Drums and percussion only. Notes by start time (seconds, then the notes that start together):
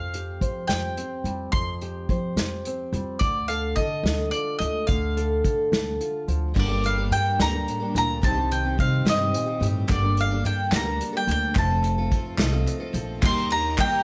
0.14 closed hi-hat
0.42 kick, closed hi-hat
0.69 snare, closed hi-hat
0.97 closed hi-hat
1.25 closed hi-hat
1.53 kick, closed hi-hat
1.81 closed hi-hat
2.09 kick, closed hi-hat
2.37 snare, closed hi-hat
2.65 closed hi-hat
2.93 closed hi-hat
3.21 kick, closed hi-hat
3.49 closed hi-hat
3.77 kick, closed hi-hat
4.06 snare, closed hi-hat
4.34 closed hi-hat
4.61 closed hi-hat
4.89 kick, closed hi-hat
5.17 closed hi-hat
5.45 kick, closed hi-hat
5.73 snare, closed hi-hat
6.01 closed hi-hat
6.28 closed hi-hat
6.56 kick, crash
6.84 closed hi-hat
7.12 closed hi-hat
7.40 snare, closed hi-hat
7.68 closed hi-hat
7.96 closed hi-hat
8.23 kick, closed hi-hat
8.51 closed hi-hat
8.79 kick, closed hi-hat
9.07 snare, closed hi-hat
9.34 closed hi-hat
9.63 closed hi-hat
9.89 kick, clap, closed hi-hat
10.17 closed hi-hat
10.45 closed hi-hat
10.72 snare, clap, closed hi-hat
11.01 closed hi-hat
11.28 closed hi-hat
11.55 kick, clap, closed hi-hat
11.83 clap, closed hi-hat
12.12 kick, closed hi-hat
12.38 snare, clap, closed hi-hat
12.53 clap
12.67 clap, closed hi-hat
12.94 closed hi-hat
13.22 kick, clap, crash
13.50 ride
13.78 kick, clap, ride